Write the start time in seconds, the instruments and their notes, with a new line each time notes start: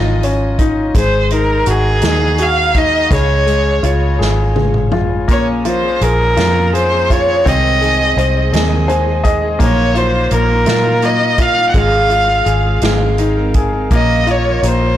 Already playing: fingered electric bass G#1, grand piano F3 C#4 D#4 F4
0.23 grand piano C#4, closed hi-hat
0.59 grand piano D#4, kick, closed hi-hat
0.95 fingered electric bass G#1, grand piano G#3, violin C5, kick, closed hi-hat
1.30 grand piano D#4, violin A#4, closed hi-hat
1.66 fingered electric bass G#1, grand piano F#4, violin G#4, closed hi-hat
2.02 fingered electric bass D#2, grand piano D#4, snare, closed hi-hat
2.38 grand piano F#4, closed hi-hat
2.42 violin F5
2.75 grand piano D#4, violin D#5, kick, closed hi-hat
3.11 fingered electric bass C#2, grand piano C#3, violin C#5, kick, closed hi-hat
3.46 grand piano G#3, closed hi-hat
3.83 fingered electric bass C#2, grand piano F4, closed hi-hat
4.19 fingered electric bass G#1, grand piano G#4, snare
4.55 grand piano G#3, high tom
4.74 mid tom
4.92 grand piano F4, mid tom
5.28 fingered electric bass A#1, steel-string acoustic guitar A#2 F3 A#3 C#4 G#4, grand piano A#3, violin C#5, kick, closed hi-hat
5.65 steel-string acoustic guitar F3 A#3 C#4 G#4, grand piano F4, violin C5, closed hi-hat
5.82 steel-string acoustic guitar A#3 C#4 G#4
6.01 fingered electric bass A#1, grand piano G#4, violin A#4, closed hi-hat
6.19 steel-string acoustic guitar A#3 C#4 G#4
6.37 fingered electric bass F2, steel-string acoustic guitar A#2 F3 A#3 C#4 G#4, grand piano F4, snare, closed hi-hat
6.73 steel-string acoustic guitar F3 A#3 C#4 G#4, grand piano G#4, violin C5, closed hi-hat
6.91 steel-string acoustic guitar A#3 C#4 G#4
7.10 grand piano F4, violin C#5, kick, closed hi-hat
7.27 steel-string acoustic guitar A#3 C#4 G#4
7.45 fingered electric bass C2, steel-string acoustic guitar C3 D#3 G#3 D#4 G#4, grand piano C4, violin D#5, kick, closed hi-hat
7.81 steel-string acoustic guitar D#3 G#3 D#4 G#4, grand piano G#4, closed hi-hat
7.99 steel-string acoustic guitar G#3 D#4 G#4
8.17 fingered electric bass C2, grand piano C5, closed hi-hat
8.35 steel-string acoustic guitar G#3 D#4 G#4
8.53 fingered electric bass D#2, steel-string acoustic guitar C3 D#3 G#3 D#4 G#4, grand piano G#4, snare, closed hi-hat
8.88 steel-string acoustic guitar D#3 G#3 D#4 G#4, grand piano C5 G#5, closed hi-hat
9.07 steel-string acoustic guitar G#3 D#4 G#4
9.24 grand piano G#4 D#5, kick, closed hi-hat
9.42 steel-string acoustic guitar G#3 D#4 G#4
9.59 fingered electric bass A#1, steel-string acoustic guitar A#2 F#3 A#3 D#4 F4, grand piano A#3, violin C#5, kick, closed hi-hat
9.95 steel-string acoustic guitar F#3 A#3 D#4 F4, grand piano F4, violin C5, closed hi-hat
10.13 steel-string acoustic guitar A#3 D#4 F4
10.31 fingered electric bass A#1, grand piano A#3, violin A#4, closed hi-hat
10.48 steel-string acoustic guitar A#3 D#4 F4
10.66 fingered electric bass A#2, steel-string acoustic guitar A#2 F#3 A#3 D#4 F4, grand piano F4, snare, closed hi-hat
11.02 steel-string acoustic guitar F#3 A#3 D#4 F4, grand piano A#3, violin D#5, closed hi-hat
11.20 steel-string acoustic guitar A#3 D#4 F4
11.38 grand piano F4, violin F5, kick, closed hi-hat
11.56 steel-string acoustic guitar A#3 D#4 F4
11.70 violin F#5
11.74 fingered electric bass G#1, steel-string acoustic guitar G#2 C#3 G#3 C#4 F4 G#4, grand piano G#3, kick, closed hi-hat
11.78 violin F5
12.10 steel-string acoustic guitar G#3 C#4 F4 G#4, grand piano F4, closed hi-hat
12.28 steel-string acoustic guitar G#3 C#4 F4 G#4
12.46 fingered electric bass G#1, grand piano G#4, closed hi-hat
12.64 steel-string acoustic guitar G#3 C#4 F4 G#4
12.82 fingered electric bass G#1, steel-string acoustic guitar G#3 C4 D#4 A#4, grand piano G#3, snare, closed hi-hat
13.18 steel-string acoustic guitar G#3 C4 D#4 A#4, grand piano D#4, closed hi-hat
13.36 steel-string acoustic guitar C4 D#4 A#4
13.54 grand piano G#4, kick, closed hi-hat
13.73 steel-string acoustic guitar C4 D#4 A#4
13.91 fingered electric bass A#1, steel-string acoustic guitar A#2 F3 C#4 F4 A#4, grand piano A#3, violin D#5, kick, closed hi-hat
14.27 steel-string acoustic guitar F3 C#4 F4 A#4, grand piano F4, violin C#5, closed hi-hat
14.45 steel-string acoustic guitar C#4 F4 A#4
14.63 fingered electric bass A#1, grand piano A#3, closed hi-hat
14.67 violin C5
14.81 steel-string acoustic guitar C#4 F4 A#4